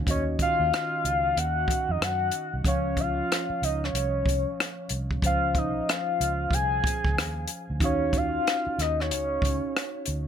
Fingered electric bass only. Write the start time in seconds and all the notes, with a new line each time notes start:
0.07 D#2
0.60 D#2
1.05 C#2
1.37 D#2
1.89 F2
2.01 F#2
2.54 C2
2.65 C#2
3.50 muted fingered electric bass stroke
3.62 C#2
3.94 C2
4.26 C2
4.90 C2
5.23 C#2
6.20 C#2
6.51 C2
7.05 C#2
7.17 D#2
7.70 D2
7.81 D#2
8.67 muted fingered electric bass stroke
8.78 D#2
9.11 C#2
9.42 C#2
10.08 D2